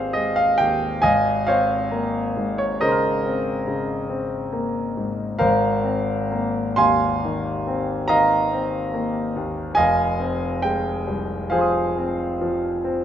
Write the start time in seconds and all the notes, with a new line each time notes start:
Already playing: G#1 G#3 C4 G#4 C5 D#5 F5
0.13 G#3 D#5
0.36 F5
0.58 D#2 G5
1.02 G#1 D#5 F5 G#5
1.47 C4 C5 C#5 F5
1.91 A#3
2.37 G#2
2.58 C#5
2.81 C#3 A#4 C5 C#5 D#5
2.86 A#5 C6
2.92 F6
3.26 C4
3.68 C#3
4.09 C4
4.52 A#3
4.97 G#2
5.39 G#1 A#4 C5 F5
5.84 C4
6.32 A#3
6.76 D#2 F5 G#5 C6
7.25 D#3
7.67 C4
8.08 D#3 D#5 F5 A#5
8.52 C4
8.94 A#3
9.36 D#2
9.75 F1 D#5 F5 G#5
10.20 C4
10.62 G#3 G5
11.07 C2
11.50 F3 G#4 C5 F5
11.55 G#5 C6
11.61 D#6
11.98 C4
12.41 F3
12.84 C4